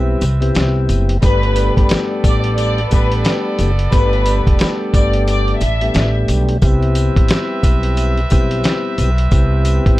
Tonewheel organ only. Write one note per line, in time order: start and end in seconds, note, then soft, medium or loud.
0.00 0.24 G3 medium
0.00 0.24 B3 medium
0.00 0.25 C4 medium
0.00 0.25 E4 medium
0.00 0.25 G4 loud
0.40 1.17 G3 medium
0.40 1.17 B3 medium
0.40 1.17 C4 medium
0.40 1.17 E4 medium
0.40 1.18 G4 loud
1.22 2.80 G3 medium
1.22 2.80 A3 medium
1.22 2.81 B3 medium
1.22 2.81 D4 medium
1.22 2.81 G4 loud
2.90 3.71 G3 medium
2.90 3.71 A3 medium
2.90 3.71 B3 medium
2.90 3.71 D4 medium
2.90 3.71 G4 loud
3.91 5.63 G3 loud
3.91 5.63 A3 medium
3.91 5.63 B3 medium
3.91 5.63 D4 medium
3.91 5.64 G4 loud
5.82 6.57 G3 medium
5.82 6.57 A3 medium
5.82 6.57 B3 medium
5.82 6.58 D4 medium
5.82 6.58 G4 loud
6.63 8.20 G3 medium
6.63 8.21 B3 medium
6.63 8.21 C4 medium
6.63 8.21 E4 medium
6.63 8.21 G4 loud
8.31 9.10 G3 medium
8.31 9.11 B3 medium
8.31 9.11 C4 medium
8.31 9.11 E4 medium
8.31 9.11 G4 loud
9.32 10.00 G3 medium
9.32 10.00 B3 medium
9.32 10.00 C4 medium
9.32 10.00 E4 medium
9.32 10.00 G4 loud